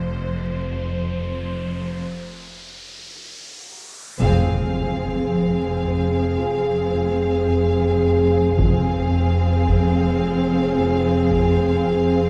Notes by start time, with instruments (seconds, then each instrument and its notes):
Already playing: double bass section F1, cello section F2, violin section C5, riser
4.19 double bass section F1, cello section F2, marimba F2, viola section C4, french horn section C4 G#4, violin section G#4 F5, taiko, impact
4.74 marimba F2
5.29 marimba F3
5.84 marimba F2, taiko
6.38 marimba F2
6.93 marimba F2
7.48 marimba F2
8.03 marimba F2
8.57 double bass section F1, marimba F2, cello section F2, viola section C4, french horn section C4 G#4, violin section G#4 F5, taiko
9.12 marimba F2
9.67 marimba F3, taiko
10.22 marimba F2
10.77 marimba F2
11.31 marimba F2, taiko
11.85 marimba F2